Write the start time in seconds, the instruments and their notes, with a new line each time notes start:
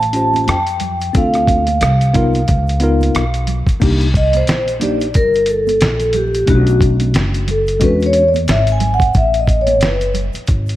Already playing: upright bass A1, vibraphone A5
0.00 closed hi-hat, shaker
0.13 tine electric piano C#4 F4 G4 C5, closed hi-hat, shaker
0.34 closed hi-hat, high conga, shaker
0.44 upright bass F2, vibraphone A5, closed hi-hat, high conga, low conga, shaker
0.49 vibraphone G5, cross-stick
0.67 closed hi-hat, shaker
0.80 closed hi-hat, low conga, shaker
1.01 closed hi-hat, shaker
1.13 upright bass D2, tine electric piano C4 D4 F4 A4, kick, closed hi-hat, shaker
1.17 vibraphone F5
1.34 cross-stick, closed hi-hat, shaker
1.47 kick, closed hi-hat, high conga, shaker
1.67 closed hi-hat, high conga, shaker
1.81 upright bass C2, cross-stick, closed hi-hat, shaker
2.01 closed hi-hat, shaker
2.14 tine electric piano B3 D#4 F4 A#4, kick, closed hi-hat, low conga, shaker
2.33 closed hi-hat, high conga, shaker
2.48 upright bass C#2, kick, closed hi-hat, shaker
2.67 closed hi-hat, shaker
2.80 tine electric piano B3 D#4 F4 A#4, closed hi-hat, shaker
3.01 closed hi-hat, high conga, shaker
3.14 upright bass B1, cross-stick, closed hi-hat, high conga, low conga, shaker
3.34 closed hi-hat, shaker
3.47 closed hi-hat, low conga, shaker
3.67 muted upright bass stroke, kick, closed hi-hat, shaker
3.80 upright bass C2, tine electric piano A#3 D4 D#4 G4, kick, closed hi-hat, crash, shaker
4.01 closed hi-hat, shaker
4.14 vibraphone D#5, kick, closed hi-hat, shaker
4.33 vibraphone C5, closed hi-hat, high conga, shaker
4.47 upright bass A#1, snare, closed hi-hat, shaker
4.68 closed hi-hat, shaker
4.80 tine electric piano A#3 D4 D#4 G4, vibraphone D5, closed hi-hat, low conga, shaker
5.00 closed hi-hat, shaker
5.14 upright bass G1, vibraphone A#4, kick, closed hi-hat, shaker
5.34 closed hi-hat, shaker
5.46 vibraphone A4, closed hi-hat, shaker
5.67 closed hi-hat, high conga, shaker
5.81 upright bass A#1, snare, closed hi-hat, high conga, shaker
6.00 closed hi-hat, shaker
6.13 vibraphone G4, closed hi-hat, low conga, shaker
6.34 closed hi-hat, shaker
6.46 upright bass B1, tine electric piano A3 C#4 D4 E4, vibraphone F#4, kick, closed hi-hat, shaker
6.56 tine electric piano F#4
6.67 closed hi-hat, shaker
6.81 kick, closed hi-hat, shaker
7.00 closed hi-hat, high conga, shaker
7.14 upright bass F#1, snare, closed hi-hat, shaker
7.34 closed hi-hat, shaker
7.48 vibraphone A4, closed hi-hat, low conga, shaker
7.67 closed hi-hat, shaker
7.80 upright bass E2, tine electric piano G#3 C#4 D4 F#4, kick, closed hi-hat, shaker
7.84 vibraphone B4
8.00 closed hi-hat, shaker
8.06 vibraphone C#5
8.13 closed hi-hat, shaker
8.28 vibraphone D5
8.34 closed hi-hat, high conga, shaker
8.47 upright bass G#1, vibraphone E5, snare, closed hi-hat, high conga, shaker
8.67 closed hi-hat, shaker
8.72 vibraphone G#5
8.80 closed hi-hat, low conga, shaker
8.94 vibraphone F#5
9.00 kick, closed hi-hat, shaker
9.13 upright bass A1, vibraphone E5, kick, closed hi-hat, shaker
9.34 closed hi-hat, shaker
9.40 vibraphone D#5
9.47 kick, closed hi-hat, shaker
9.61 vibraphone C#5
9.67 closed hi-hat, high conga, shaker
9.81 upright bass F#1, vibraphone B4, snare, closed hi-hat, shaker
10.01 closed hi-hat, shaker
10.14 closed hi-hat, low conga, shaker
10.33 muted upright bass stroke, closed hi-hat, shaker
10.47 upright bass G#1, kick, closed hi-hat, shaker
10.66 closed hi-hat, shaker